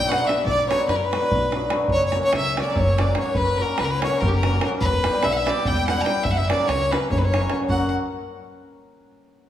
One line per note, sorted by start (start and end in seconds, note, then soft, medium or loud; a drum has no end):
0.00 0.21 B1 loud
0.00 0.10 G5 loud
0.00 0.11 G5 loud
0.06 0.22 F#3 medium
0.06 0.20 B3 medium
0.06 0.20 D4 medium
0.06 0.20 F#4 medium
0.06 0.28 F#5 loud
0.06 0.29 F#5 loud
0.12 davul high medium
0.21 0.66 F#3 medium
0.21 0.37 B3 medium
0.21 0.37 F#4 medium
0.21 davul high soft
0.25 0.38 D4 medium
0.25 0.44 E5 medium
0.25 0.45 E5 loud
0.29 davul high medium
0.38 davul high soft
0.44 0.71 B1 loud
0.44 0.68 D5 loud
0.44 davul low medium
0.59 davul high soft
0.67 1.10 F#3 medium
0.67 0.81 B3 medium
0.67 0.81 D4 medium
0.67 0.81 F#4 medium
0.67 0.87 C#5 loud
0.67 0.87 C#5 medium
0.67 davul high medium
0.80 davul high soft
0.88 1.14 F#2 medium
0.88 0.95 B4 medium
0.88 0.97 B4 loud
0.88 davul high medium
0.93 1.04 A#4 medium
0.93 1.06 A#4 medium
1.01 1.71 B4 loud
1.01 1.72 B4 loud
1.01 davul high soft
1.11 1.53 F#3 medium
1.11 1.25 B3 medium
1.11 1.25 D4 medium
1.11 1.25 F#4 medium
1.11 davul high medium
1.24 davul high soft
1.32 1.67 B1 medium
1.32 davul low medium
1.52 1.69 F#3 medium
1.52 1.66 B3 medium
1.52 1.66 D4 medium
1.52 1.67 F#4 medium
1.52 davul high medium
1.61 davul high soft
1.70 1.95 F#3 medium
1.70 1.83 B3 medium
1.70 1.84 D4 medium
1.70 1.84 F#4 medium
1.70 davul high medium
1.79 davul high soft
1.88 2.16 F#1 medium
1.88 davul low medium
1.92 2.06 C#5 loud
1.92 2.04 C#5 medium
2.00 davul high soft
2.05 2.19 C#5 medium
2.05 2.21 C#5 loud
2.12 2.57 F#3 medium
2.12 2.27 A#3 medium
2.12 davul high medium
2.16 2.28 C#4 medium
2.16 2.28 F#4 medium
2.21 2.33 C#5 loud
2.21 davul high soft
2.25 2.35 C#5 loud
2.33 2.60 C#2 medium
2.33 2.56 E5 medium
2.33 davul high medium
2.37 2.58 E5 loud
2.46 davul high soft
2.56 2.96 F#3 medium
2.56 2.70 A#3 medium
2.56 2.70 C#4 medium
2.56 2.71 F#4 medium
2.56 2.77 D5 medium
2.56 davul high medium
2.61 2.81 D5 medium
2.69 davul high soft
2.76 3.11 F#1 loud
2.76 2.99 C#5 medium
2.76 3.02 C#5 loud
2.76 davul low loud
2.88 davul high soft
2.98 3.16 F#3 medium
2.98 3.10 A#3 medium
2.98 3.10 C#4 medium
2.98 3.10 F#4 medium
2.98 3.14 D5 medium
2.98 3.18 D5 loud
2.98 davul high medium
3.07 davul high soft
3.14 3.58 F#3 medium
3.14 3.29 A#3 medium
3.14 3.29 C#4 medium
3.14 3.36 C#5 medium
3.14 davul high medium
3.19 3.30 F#4 medium
3.19 3.39 C#5 medium
3.26 davul high soft
3.34 3.61 F#1 medium
3.34 3.58 B4 loud
3.34 3.63 B4 loud
3.34 davul low medium
3.47 davul high soft
3.57 4.01 F#3 medium
3.57 3.72 A#3 medium
3.57 3.72 C#4 medium
3.57 3.78 A#4 medium
3.61 3.72 F#4 medium
3.61 3.81 A#4 loud
3.69 davul high soft
3.77 4.05 C#2 medium
3.77 3.84 B4 medium
3.77 3.86 B4 loud
3.77 davul high medium
3.83 3.89 A#4 medium
3.83 3.92 A#4 medium
3.88 3.98 B4 medium
3.88 4.03 B4 loud
3.88 davul high soft
3.99 4.18 C#5 medium
3.99 davul high medium
4.03 4.42 F#3 medium
4.03 4.16 A#3 medium
4.03 4.15 C#4 medium
4.03 4.16 F#4 medium
4.03 4.22 C#5 loud
4.12 davul high soft
4.17 4.27 A#4 medium
4.17 4.30 A#4 loud
4.22 4.57 F#1 loud
4.22 4.34 G4 medium
4.22 davul low loud
4.28 4.38 G4 medium
4.32 4.65 A#4 medium
4.32 4.67 A#4 loud
4.32 davul high soft
4.43 4.59 F#3 medium
4.43 4.55 A#3 medium
4.43 4.56 C#4 medium
4.43 4.56 F#4 medium
4.43 davul high medium
4.53 davul high soft
4.60 4.85 F#3 medium
4.60 4.74 A#3 medium
4.60 4.74 C#4 medium
4.60 4.74 F#4 medium
4.60 davul high medium
4.72 davul high soft
4.78 5.06 E1 loud
4.78 5.26 B4 loud
4.78 5.25 B4 loud
4.78 davul low loud
4.93 davul high soft
5.04 5.46 G3 medium
5.04 5.17 B3 medium
5.04 5.17 E4 medium
5.04 5.17 G4 medium
5.04 davul high medium
5.13 davul high soft
5.23 5.50 B1 medium
5.23 5.34 E5 loud
5.23 5.30 E5 medium
5.23 davul high medium
5.29 5.36 F#5 medium
5.29 5.38 F#5 loud
5.34 5.47 E5 loud
5.34 5.51 E5 loud
5.34 davul high soft
5.46 5.86 G3 medium
5.46 5.60 B3 medium
5.46 5.60 E4 medium
5.46 5.67 D5 medium
5.46 5.69 D5 loud
5.46 davul high medium
5.50 5.61 G4 medium
5.55 davul high soft
5.65 6.02 E1 loud
5.65 5.87 G5 loud
5.65 davul low loud
5.77 davul high soft
5.87 6.04 G3 medium
5.87 6.00 B3 medium
5.87 6.00 E4 medium
5.87 6.01 G4 medium
5.87 6.02 F#5 loud
5.87 6.03 F#5 loud
5.87 davul high medium
5.98 6.06 A#5 medium
5.98 6.09 A#5 medium
5.98 davul high soft
6.05 6.29 G3 medium
6.05 6.18 B3 medium
6.05 6.18 E4 medium
6.05 6.19 G4 medium
6.05 6.25 G5 loud
6.05 6.27 G5 loud
6.05 davul high medium
6.24 6.51 F#1 medium
6.24 6.33 E5 loud
6.24 6.35 E5 loud
6.24 davul low medium
6.31 6.38 F#5 loud
6.31 6.39 F#5 medium
6.37 6.49 E5 loud
6.37 davul high soft
6.49 6.90 F#3 medium
6.49 6.61 A#3 medium
6.49 6.61 C#4 medium
6.49 6.61 F#4 medium
6.49 6.69 D5 loud
6.49 6.69 D5 medium
6.49 davul high medium
6.59 davul high soft
6.67 6.94 C#2 loud
6.67 6.95 C#5 medium
6.67 6.93 C#5 loud
6.67 davul high medium
6.82 davul high soft
6.91 7.30 F#3 medium
6.91 7.03 A#3 medium
6.91 7.04 C#4 medium
6.91 7.04 F#4 medium
6.91 7.10 B4 loud
6.91 7.09 B4 medium
6.91 davul high medium
7.02 davul high soft
7.10 7.45 F#1 loud
7.10 7.19 C#5 medium
7.10 7.20 C#5 medium
7.10 davul low loud
7.17 7.25 B4 medium
7.17 7.27 B4 medium
7.22 7.54 C#5 medium
7.22 7.55 C#5 loud
7.22 davul high soft
7.32 7.49 F#3 medium
7.32 7.44 A#3 medium
7.32 7.44 C#4 medium
7.32 7.44 F#4 medium
7.32 davul high medium
7.42 davul high soft
7.50 7.69 F#3 medium
7.50 7.62 A#3 medium
7.50 7.62 C#4 medium
7.50 7.62 F#4 medium
7.50 davul high medium
7.60 davul high soft
7.68 7.91 F#1 medium
7.68 7.91 F#3 medium
7.68 7.91 A#3 medium
7.68 7.91 C#4 medium
7.68 7.92 F#4 medium
7.68 7.91 F#5 medium
7.68 davul low medium